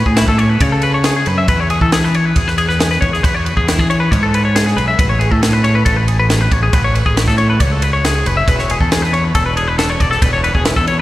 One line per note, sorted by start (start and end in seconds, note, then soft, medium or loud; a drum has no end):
0.06 0.26 A2 medium
0.06 0.17 G#4 medium
0.06 kick medium
0.17 0.28 E4 medium
0.17 snare loud
0.17 ride medium
0.28 0.58 A2 medium
0.28 0.38 A4 medium
0.28 kick medium
0.38 0.50 C#5 medium
0.38 ride medium
0.50 0.61 B4 medium
0.60 1.23 C#3 medium
0.60 0.72 C#5 medium
0.60 kick medium
0.60 ride loud
0.72 0.83 A4 medium
0.82 0.94 B4 medium
0.82 ride medium
0.94 1.05 C#5 medium
1.04 1.15 G#4 medium
1.04 snare loud
1.04 ride medium
1.16 1.27 G#4 medium
1.26 1.47 F#2 medium
1.26 1.38 B4 medium
1.26 ride medium
1.38 1.48 E5 medium
1.48 1.78 E2 medium
1.48 1.60 B4 medium
1.48 kick loud
1.48 ride medium
1.60 1.70 C#5 medium
1.70 1.81 G#4 medium
1.70 ride medium
1.81 2.32 E3 medium
1.81 1.92 A4 medium
1.81 kick medium
1.92 2.04 G#4 medium
1.92 snare loud
1.92 ride medium
2.04 2.15 B4 medium
2.04 snare soft
2.14 2.26 C#5 medium
2.14 ride medium
2.26 2.37 B4 medium
2.36 2.98 E2 medium
2.36 2.48 G#4 medium
2.36 kick medium
2.36 ride medium
2.48 2.58 B4 medium
2.48 snare soft
2.58 2.68 G#4 medium
2.58 ride medium
2.69 2.80 B4 medium
2.69 snare soft
2.80 2.91 G#4 medium
2.80 snare loud
2.80 ride medium
2.91 3.00 B4 medium
2.91 snare soft
3.01 3.22 E2 medium
3.01 3.12 C#5 medium
3.01 kick medium
3.01 ride medium
3.13 3.23 G#4 medium
3.13 snare soft
3.23 3.54 E2 medium
3.23 3.35 B4 medium
3.23 kick loud
3.23 ride loud
3.35 3.45 C#5 medium
3.45 3.56 B4 medium
3.45 ride medium
3.57 3.77 E2 medium
3.57 3.68 G#4 medium
3.57 kick medium
3.68 3.79 E4 medium
3.68 snare loud
3.68 ride loud
3.79 4.08 E3 medium
3.79 3.90 G#4 medium
3.79 kick medium
3.90 4.00 C#5 medium
3.90 ride medium
4.00 4.11 B4 medium
4.11 4.73 G#2 medium
4.11 4.22 C#5 medium
4.11 kick medium
4.11 ride medium
4.23 4.33 A4 medium
4.34 4.44 B4 medium
4.34 ride medium
4.45 4.55 C#5 medium
4.55 4.65 G#4 medium
4.55 snare loud
4.55 ride medium
4.66 4.77 G#4 medium
4.66 snare soft
4.77 4.96 B1 medium
4.77 4.87 B4 medium
4.77 ride medium
4.88 4.99 E5 medium
4.99 5.29 A1 medium
4.99 5.10 B4 medium
4.99 kick loud
4.99 ride medium
5.09 5.20 C#5 medium
5.19 5.31 G#4 medium
5.19 ride medium
5.31 5.82 A2 medium
5.31 5.42 A4 medium
5.31 kick medium
5.42 5.53 G#4 medium
5.42 snare loud
5.42 ride medium
5.53 5.64 B4 medium
5.64 5.75 C#5 medium
5.64 ride medium
5.75 5.85 B4 medium
5.85 6.47 A1 medium
5.85 5.96 A4 medium
5.85 kick medium
5.85 ride medium
5.96 6.08 B4 medium
6.08 6.19 G#4 medium
6.08 ride medium
6.20 6.29 B4 medium
6.29 6.41 G#4 medium
6.29 snare loud
6.29 ride medium
6.41 6.52 B4 medium
6.52 6.71 A1 medium
6.52 6.62 C#5 medium
6.52 kick medium
6.52 ride medium
6.63 6.73 G#4 medium
6.73 7.03 A1 medium
6.73 6.84 B4 medium
6.73 kick loud
6.73 ride medium
6.84 6.95 C#5 medium
6.95 7.06 B4 medium
6.95 ride medium
7.06 7.26 A1 medium
7.06 7.17 G#4 medium
7.06 kick medium
7.17 7.27 E4 medium
7.17 snare loud
7.17 ride medium
7.28 7.57 A2 medium
7.28 7.38 A4 medium
7.28 kick medium
7.28 snare soft
7.38 7.49 C#5 medium
7.38 ride medium
7.50 7.60 B4 medium
7.60 8.22 C#2 medium
7.60 7.72 C#5 medium
7.60 kick medium
7.60 ride medium
7.72 7.83 A4 medium
7.82 7.93 B4 medium
7.82 ride medium
7.93 8.04 C#5 medium
8.05 8.14 G#4 medium
8.05 snare loud
8.05 ride medium
8.15 8.26 G#4 medium
8.26 8.46 F#1 medium
8.26 8.37 B4 medium
8.26 ride medium
8.37 8.48 E5 medium
8.48 8.77 E1 medium
8.48 8.59 B4 medium
8.48 kick loud
8.48 ride medium
8.59 8.70 C#5 medium
8.59 snare soft
8.70 8.80 G#4 medium
8.70 ride medium
8.80 9.31 E2 medium
8.80 8.92 A4 medium
8.80 kick medium
8.92 9.02 G#4 medium
8.92 snare loud
8.92 ride medium
9.02 9.13 B4 medium
9.02 snare soft
9.13 9.24 C#5 medium
9.13 ride medium
9.24 9.35 B4 medium
9.35 9.96 E1 medium
9.35 9.46 A4 medium
9.35 kick medium
9.35 ride medium
9.46 9.56 B4 medium
9.57 9.68 G#4 medium
9.57 ride medium
9.68 9.78 B4 medium
9.78 9.90 A4 medium
9.78 snare medium
9.78 ride medium
9.90 10.00 C#5 medium
10.00 10.20 E1 medium
10.00 10.10 D5 medium
10.00 kick medium
10.00 ride medium
10.11 10.22 A4 medium
10.11 snare soft
10.22 10.52 E1 medium
10.22 10.33 B4 medium
10.22 kick loud
10.22 ride medium
10.33 10.43 C#5 medium
10.44 10.55 B4 medium
10.44 ride medium
10.55 10.75 E1 medium
10.55 10.65 G#4 medium
10.55 kick medium
10.65 10.76 E4 medium
10.65 snare loud
10.65 ride medium
10.76 11.02 E2 medium
10.76 10.87 A4 medium
10.76 kick medium
10.87 10.99 C#5 medium
10.87 ride medium